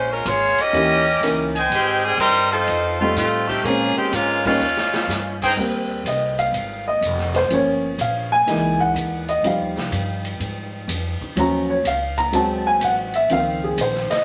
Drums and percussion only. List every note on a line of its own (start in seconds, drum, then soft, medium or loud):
0.26 hi-hat pedal medium
0.26 ride medium
0.58 ride soft
0.74 ride medium
1.23 hi-hat pedal soft
1.23 ride medium
1.56 ride soft
1.72 ride medium
2.20 hi-hat pedal medium
2.20 ride medium
2.52 ride soft
2.67 ride medium
3.16 hi-hat pedal medium
3.16 ride medium
3.49 kick medium
3.65 ride medium
4.13 hi-hat pedal medium
4.13 ride medium
4.45 kick medium
4.45 crash medium
4.77 snare medium
4.94 snare medium
5.09 snare medium
5.09 hi-hat pedal medium
5.42 kick medium
5.42 crash medium
6.06 hi-hat pedal medium
6.06 ride medium
6.38 ride soft
6.54 ride medium
7.02 hi-hat pedal medium
7.02 ride medium
7.18 snare soft
7.34 snare soft
7.34 ride soft
7.50 ride medium
7.99 hi-hat pedal medium
7.99 ride medium
8.48 snare soft
8.48 ride medium
8.80 kick medium
8.96 hi-hat pedal medium
8.96 ride medium
9.28 ride soft
9.44 ride medium
9.77 snare medium
9.92 hi-hat pedal soft
9.92 ride medium
10.25 ride medium
10.40 ride medium
10.89 hi-hat pedal medium
10.89 ride medium
11.21 kick medium
11.37 ride medium
11.85 hi-hat pedal medium
11.85 ride medium
12.18 kick medium
12.18 ride medium
12.33 ride medium
12.81 hi-hat pedal medium
12.81 ride medium
13.14 ride soft
13.30 ride medium
13.78 hi-hat pedal medium
13.78 ride medium
13.95 snare soft
14.10 snare soft
14.10 ride soft